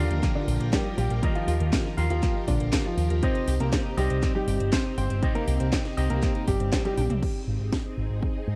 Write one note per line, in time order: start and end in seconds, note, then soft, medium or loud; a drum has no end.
0.00 0.30 D3 medium
0.00 1.20 F3 medium
0.00 3.19 F3 medium
0.00 0.30 D4 medium
0.00 1.20 F4 medium
0.00 3.19 F4 medium
0.00 1.20 G4 medium
0.00 7.19 G4 medium
0.00 1.20 A#4 medium
0.00 3.19 A#4 medium
0.00 1.20 F5 loud
0.10 0.20 D#2 medium
0.10 0.22 A#3 medium
0.10 closed hi-hat medium
0.23 0.35 A#3 loud
0.23 kick loud
0.23 clap soft
0.23 closed hi-hat medium
0.35 0.68 D3 medium
0.35 0.68 D4 medium
0.35 0.45 D#4 medium
0.48 0.57 A#1 loud
0.48 0.53 F4 medium
0.48 open hi-hat loud
0.60 0.70 A#1 medium
0.60 0.72 A#3 medium
0.60 closed hi-hat medium
0.73 0.95 G3 medium
0.73 0.85 A#3 loud
0.73 0.95 G4 medium
0.73 kick loud
0.73 snare loud
0.73 clap medium
0.73 closed hi-hat medium
0.85 0.95 D#4 medium
0.98 1.07 A#1 medium
0.98 1.30 G3 medium
0.98 1.04 F4 medium
0.98 1.30 G4 loud
0.98 open hi-hat loud
1.10 1.20 A#1 medium
1.10 1.22 A#3 medium
1.10 closed hi-hat soft
1.22 1.95 D#3 medium
1.22 1.35 A#3 loud
1.22 1.95 F4 medium
1.22 1.95 G4 medium
1.22 1.95 A#4 medium
1.22 1.95 D#5 medium
1.22 kick loud
1.22 closed hi-hat medium
1.35 1.68 F3 medium
1.35 1.45 D#4 medium
1.35 1.68 F4 loud
1.35 closed hi-hat soft
1.48 1.57 D#2 medium
1.48 1.54 F4 medium
1.48 open hi-hat loud
1.60 1.70 D#2 medium
1.60 1.72 A#3 medium
1.60 closed hi-hat medium
1.73 1.85 A#3 loud
1.73 kick loud
1.73 snare loud
1.73 clap medium
1.73 closed hi-hat medium
1.85 1.95 D#4 medium
1.85 snare soft
1.97 2.07 D#2 medium
1.97 3.20 F3 medium
1.97 2.04 F4 medium
1.97 3.20 F4 medium
1.97 3.20 G4 medium
1.97 3.20 A#4 medium
1.97 3.20 F5 loud
1.97 open hi-hat loud
2.10 2.20 D#2 medium
2.10 2.43 F3 medium
2.10 2.22 A#3 medium
2.10 2.43 F4 loud
2.10 closed hi-hat medium
2.23 2.35 A#3 loud
2.23 kick loud
2.23 clap soft
2.23 closed hi-hat medium
2.35 2.45 D#4 medium
2.48 2.57 A#1 loud
2.48 2.80 D3 medium
2.48 2.80 D4 medium
2.48 2.54 F4 medium
2.48 kick medium
2.48 open hi-hat loud
2.60 2.70 A#1 medium
2.60 2.72 A#3 medium
2.60 closed hi-hat medium
2.73 2.85 A#3 loud
2.73 kick loud
2.73 snare loud
2.73 clap medium
2.73 closed hi-hat medium
2.85 3.18 F3 medium
2.85 2.95 D#4 medium
2.85 3.18 F4 loud
2.97 3.07 D#2 loud
2.97 3.03 F4 medium
2.97 open hi-hat loud
3.10 3.20 D#2 medium
3.10 3.22 A#3 medium
3.10 closed hi-hat medium
3.22 3.95 C3 loud
3.22 7.19 C4 medium
3.22 3.35 C4 loud
3.22 3.55 C4 medium
3.22 3.95 D#4 medium
3.22 3.95 G4 medium
3.22 3.55 C5 loud
3.22 3.95 C5 medium
3.22 3.95 D#5 loud
3.22 kick loud
3.22 closed hi-hat medium
3.35 3.45 D#4 medium
3.35 closed hi-hat soft
3.48 3.57 C2 medium
3.48 3.53 G4 medium
3.48 open hi-hat loud
3.60 3.70 C2 medium
3.60 3.93 A#3 medium
3.60 3.72 C4 medium
3.60 3.93 A#4 loud
3.60 closed hi-hat medium
3.73 3.85 C4 loud
3.73 kick loud
3.73 snare loud
3.73 clap medium
3.73 closed hi-hat medium
3.85 3.95 D#4 medium
3.97 4.07 C2 loud
3.97 5.20 C3 medium
3.97 4.30 G3 medium
3.97 5.20 D#4 medium
3.97 4.30 G4 loud
3.97 4.03 G4 medium
3.97 5.20 G4 medium
3.97 5.20 C5 medium
3.97 5.20 D#5 loud
3.97 open hi-hat loud
4.10 4.20 C2 medium
4.10 4.21 C4 medium
4.10 closed hi-hat medium
4.23 4.35 C4 loud
4.23 kick loud
4.23 clap medium
4.23 closed hi-hat medium
4.35 4.68 G3 medium
4.35 4.45 D#4 medium
4.35 4.68 G4 loud
4.48 4.57 G1 loud
4.48 4.53 G4 medium
4.48 open hi-hat loud
4.60 4.70 G1 medium
4.60 4.71 C4 medium
4.60 closed hi-hat medium
4.73 4.85 C4 loud
4.73 4.94 C4 medium
4.73 4.94 C5 medium
4.73 kick loud
4.73 snare loud
4.73 clap loud
4.73 closed hi-hat medium
4.85 4.95 D#4 medium
4.97 5.07 G1 loud
4.97 5.30 C4 medium
4.97 5.03 G4 medium
4.97 5.30 C5 loud
4.97 open hi-hat loud
5.10 5.20 G1 medium
5.10 5.21 C4 medium
5.10 closed hi-hat medium
5.22 5.95 C3 loud
5.22 5.35 C4 loud
5.22 5.95 D#4 medium
5.22 5.95 G4 medium
5.22 5.95 C5 medium
5.22 5.95 D#5 medium
5.22 kick loud
5.22 closed hi-hat medium
5.35 5.68 A#3 medium
5.35 5.45 D#4 medium
5.35 5.68 A#4 loud
5.35 closed hi-hat soft
5.47 5.57 C2 loud
5.47 5.53 G4 medium
5.47 open hi-hat loud
5.60 5.70 C2 medium
5.60 5.71 C4 medium
5.60 closed hi-hat medium
5.72 5.84 C4 loud
5.72 kick loud
5.72 snare loud
5.72 clap medium
5.72 closed hi-hat medium
5.85 5.95 D#4 medium
5.85 snare soft
5.85 closed hi-hat soft
5.97 6.07 C2 loud
5.97 7.20 C3 medium
5.97 7.20 D#4 medium
5.97 6.03 G4 medium
5.97 7.20 G4 medium
5.97 7.20 C5 medium
5.97 7.20 D#5 loud
5.97 open hi-hat loud
6.10 6.20 C2 medium
6.10 6.43 A#3 medium
6.10 6.21 C4 medium
6.10 6.43 A#4 medium
6.10 closed hi-hat medium
6.23 6.35 C4 loud
6.23 kick loud
6.23 clap medium
6.23 closed hi-hat medium
6.35 6.45 D#4 medium
6.35 closed hi-hat soft
6.47 6.57 G1 loud
6.47 6.80 G3 medium
6.47 6.80 G4 medium
6.47 6.53 G4 medium
6.47 kick medium
6.47 open hi-hat loud
6.60 6.70 G1 medium
6.60 6.71 C4 medium
6.60 closed hi-hat medium
6.72 6.84 C4 loud
6.72 kick loud
6.72 snare loud
6.72 clap loud
6.72 closed hi-hat medium
6.85 7.18 G3 medium
6.85 6.95 D#4 medium
6.85 7.18 G4 loud
6.85 closed hi-hat soft
6.85 high tom medium
6.97 7.07 A#1 medium
6.97 7.03 G4 medium
6.97 open hi-hat loud
6.97 mid tom medium
7.10 7.20 C2 medium
7.10 7.22 C4 medium
7.10 closed hi-hat medium
7.10 mid tom medium
7.23 8.56 C4 medium
7.23 8.56 D#4 medium
7.23 8.56 G#4 medium
7.23 kick loud
7.23 crash medium
7.47 7.57 G#1 medium
7.60 7.70 G#1 medium
7.73 kick loud
7.73 snare loud
7.97 8.07 G#1 medium
8.10 8.20 G#1 medium
8.23 kick loud
8.48 8.56 G#2 medium